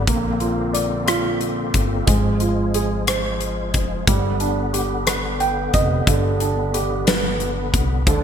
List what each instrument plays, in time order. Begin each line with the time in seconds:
Already playing: grand piano B4
0.07 upright bass A#1, tonewheel organ D3 A#3 C4, grand piano A#3, kick, closed hi-hat
0.40 grand piano F4, closed hi-hat
0.73 grand piano D5, closed hi-hat
1.06 grand piano F4, cross-stick, closed hi-hat
1.41 closed hi-hat
1.74 upright bass G1, kick, closed hi-hat
2.07 upright bass G#1, tonewheel organ F3 G#3, grand piano G#3, kick, closed hi-hat
2.40 grand piano F4, closed hi-hat
2.74 grand piano G#4, closed hi-hat
3.07 grand piano C5, cross-stick, closed hi-hat
3.41 closed hi-hat
3.74 upright bass F1, kick, closed hi-hat
4.07 upright bass G1, tonewheel organ D3 B3, grand piano G3, kick, closed hi-hat
4.40 grand piano D4, closed hi-hat
4.73 grand piano G4, closed hi-hat
5.07 grand piano B4, cross-stick, closed hi-hat
5.40 grand piano G5, closed hi-hat
5.74 upright bass F1, grand piano D#5, kick, closed hi-hat
6.07 upright bass G1, grand piano D3, kick, closed hi-hat
6.40 grand piano D4, closed hi-hat
6.74 grand piano G4, closed hi-hat
7.07 grand piano B4, snare, closed hi-hat
7.40 closed hi-hat
7.74 upright bass C2, kick, closed hi-hat
8.06 upright bass D2, grand piano D3, tonewheel organ F3 G#3 D4, kick, closed hi-hat